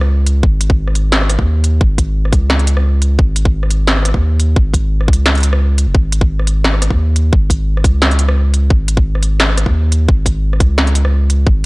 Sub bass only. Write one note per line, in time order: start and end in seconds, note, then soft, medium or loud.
0.00 0.42 C#2 medium
0.43 1.38 G#1 loud
1.39 1.80 D#2 medium
1.81 2.34 G#1 loud
2.32 3.18 C#2 medium
3.19 4.13 G#1 loud
4.14 4.56 D#2 medium
4.56 5.10 G#1 loud
5.08 5.86 C#2 medium
5.87 5.94 F#1 medium
5.95 6.89 G#1 loud
6.90 7.32 D#2 medium
7.33 7.86 G#1 loud
7.84 8.70 C#2 medium
8.70 9.65 G#1 loud
9.66 10.08 D#2 medium
10.09 10.62 G#1 loud
10.60 11.46 C#2 medium
11.46 11.66 G#1 loud